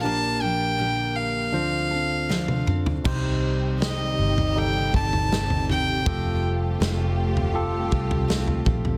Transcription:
<<
  \new Staff \with { instrumentName = "Violin" } { \time 4/4 \key c \dorian \tempo 4 = 80 a''8 g''4 f''2 r8 | r4 ees''4 g''8 a''4 g''8~ | g''8 r2. r8 | }
  \new Staff \with { instrumentName = "Tine electric piano" } { \time 4/4 \key c \dorian <d' g' bes'>2 <d' f' c''>2 | <ees' g' c''>2 <ees' g' a'>2 | <f' g' a'>2 <f' g' a'>2 | }
  \new Staff \with { instrumentName = "Tine electric piano" } { \clef bass \time 4/4 \key c \dorian <bes,, bes,>2 <d, d>2 | c4. r2 r8 | r1 | }
  \new Staff \with { instrumentName = "Steel-string acoustic guitar" } { \time 4/4 \key c \dorian <bes, d f bes d' g'>8 <f bes d' g'>8 <bes, d f bes d' g'>4 <f c' d' a'>8 <c' d' a'>8 <d f c' d' a'>8 <c' d' a'>8 | <c g c' ees' g'>4 <g c' ees' g'>4. <c' ees' g'>8 <g c' ees' g'>8 <c' ees' g'>8 | <f a c' f' g'>4 <a c' f' g'>4. <c' f' g'>8 <a c' f' g'>8 <c' f' g'>8 | }
  \new Staff \with { instrumentName = "String section" } { \time 4/4 \key c \dorian << { r1 | <ees g ees' g'>1 | <g a f' g'>1 | } \\ { r1 | c1~ | c1 | } >> }
  \new Staff \with { instrumentName = "Fingered electric bass" } { \clef bass \time 4/4 \key c \dorian r1 | c,4. g,,4 g,,4. | f,,4 f,,4. c,4 bes,,8 | }
  \new DrumStaff \with { instrumentName = "Drums" } \drummode { \time 4/4 r4 r4 r4 sn16 tommh16 toml16 tomfh16 | <cymc bd tomfh>4 sn8. tomfh16 r8 bd16 tomfh16 sn16 tomfh16 tomfh8 | <bd tomfh>4 sn8. tomfh16 r8 bd16 tomfh16 sn16 tomfh16 <bd tomfh>16 tomfh16 | }
>>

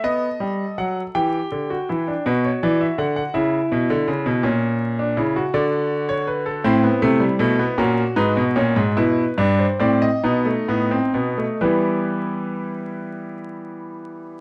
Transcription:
<<
  \new Staff \with { instrumentName = "Grand piano" } { \time 6/8 \key e \minor \tempo 4. = 54 << { dis''4 fis''8 g''4. | b'16 cis''16 d''16 e''16 fis''16 fis''16 e''4.~ | e''4. d''8. cis''16 b'16 a'16 | c''4. ais'8 b'8 cis''8 |
b'8. c''16 d''16 dis''4.~ dis''16 | <b g' b'>2. | } \\ { a'4. g'8. fis'16 e'16 d'16 | fis'4. e'4. | cis'8. d'16 e'16 fis'4.~ fis'16 | e'4. fis'4. |
e'4. dis'4. | e'2. | } >> }
  \new Staff \with { instrumentName = "Grand piano" } { \clef bass \time 6/8 \key e \minor << { b8 g8 fis8 e8 d8 e8 | r2. | r2. | c'16 b16 a16 g16 a16 b16 cis'8 dis'8 cis'8 |
r8 d'8 c'8 b16 a16 b16 c'16 b16 a16 | g2. | } \\ { r2. | b,8 e8 d8 cis8 b,16 d16 cis16 b,16 | ais,4 cis8 d4. | a,8 c8 b,8 ais,8 gis,16 b,16 ais,16 gis,16 |
b,8 g,8 a,8 b,8 a,8 b,8 | e2. | } >> }
>>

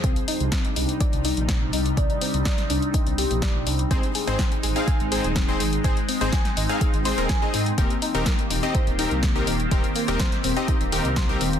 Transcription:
<<
  \new Staff \with { instrumentName = "Supersaw synth" } { \time 4/4 \key c \minor \tempo 4 = 124 r1 | r1 | <c' ees' aes' c''>16 r8 <c' ees' aes' c''>16 r8. <c' ees' aes' f''>8 r16 <c' ees' aes' c''>16 r8 <c' ees' aes' c''>16 r8 | <c' ees' aes' c''>16 r8 <c' ees' aes' c''>16 r8. <c' ees' aes' f''>8 r16 <c' ees' aes' c''>16 <c' ees' aes' bes'>16 r16 <c' ees' aes' ees''>8 r16 |
<c' ees' g' bes'>16 r8 <c' ees' g' bes'>16 r8. <c' ees' g' ees''>8 r16 <c' ees' g' bes'>16 r8 <c' ees' g' bes'>16 r8 | <c' ees' g' bes'>16 r8 <c' ees' g' bes'>16 r8. <c' ees' g' ees''>8 r16 <c' ees' g' bes'>16 r8 <c' ees' g' bes'>16 r8 | }
  \new Staff \with { instrumentName = "Synth pluck" } { \time 4/4 \key c \minor c'8 ees'8 c'8 ees'8 d''8 ees'8 c'8 ees'8 | d''8 c'8 d''8 d'8 ees'8 g'8 d''8 d'8 | c'8 aes'8 c'8 aes'8 aes''8 aes'8 c'8 aes'8 | aes''8 c'8 aes''8 ees'8 aes'8 c''8 aes''8 ees'8 |
bes8 ees'8 bes8 ees'8 c''8 ees'8 bes8 ees'8 | c''8 bes8 c''8 c'8 ees'8 g'8 c''8 c'8 | }
  \new Staff \with { instrumentName = "Ambient pad" } { \time 4/4 \key c \minor << { <c g ees'>1~ | <c g ees'>1 | <aes ees'>1~ | <aes ees'>1 |
<ees bes g'>1~ | <ees bes g'>1 | } \\ { d'1 | c'1 | c'1~ | c'1~ |
c'1~ | c'1 | } >> }
  \new Staff \with { instrumentName = "Detuned saw bass" } { \clef bass \time 4/4 \key c \minor c,16 r8 c,16 r8 c,16 r8 c,16 r16 bes,,8. c,16 r16 | c,16 r8 c,16 r8 c,16 r8 c,16 r16 bes,,8. c,16 r16 | aes,,16 r8 aes,,16 r8 aes,,16 r8 aes,,16 r16 ees,,8. aes,,16 r16 | aes,,16 r8 aes,,16 r8 aes,,16 r8 aes,,16 r16 ees,,16 r8 aes,16 r16 |
ees,,16 r8 ees,,16 r8 ees,,16 r8 ees,,16 r16 c,8. ees,,16 r16 | ees,,16 r8 ees,,16 r8 ees,,16 r8 ees,,16 r16 c,8. ees,,16 r16 | }
  \new DrumStaff \with { instrumentName = "Drums" } \drummode { \time 4/4 <hh bd>16 hh16 hho16 hh16 <hh bd sn>16 hh16 hho16 hh16 <hh bd>16 hh16 hho16 hh16 <hh bd sn>8 hho16 hh16 | <hh bd>16 hh16 hho16 hh16 <hh bd sn>16 <hh sn>16 hho16 hh16 <hh bd>16 hh16 hho16 hh16 <hh bd sn>8 hho16 hh16 | <hh bd>16 hh16 hho16 hh16 <hh bd sn>16 hh16 hho16 hh16 <hh bd>16 hh16 hho16 hh16 <hh bd sn>8 hho16 hh16 | <hh bd>16 hh16 hho16 hh16 <hh bd sn>16 <hh sn>16 hho16 hh16 <hh bd>16 hh16 hho16 hh16 <hh bd sn>8 hho16 hh16 |
<hh bd>16 hh16 hho16 hh16 <hh bd sn>16 hh16 hho16 hh16 <hh bd>16 hh16 hho16 hh16 <hh bd sn>8 hho16 hh16 | <hh bd>16 hh16 hho16 hh16 <hh bd sn>16 <hh sn>16 hho16 hh16 <hh bd>16 hh16 hho16 hh16 <hh bd sn>8 hho16 hh16 | }
>>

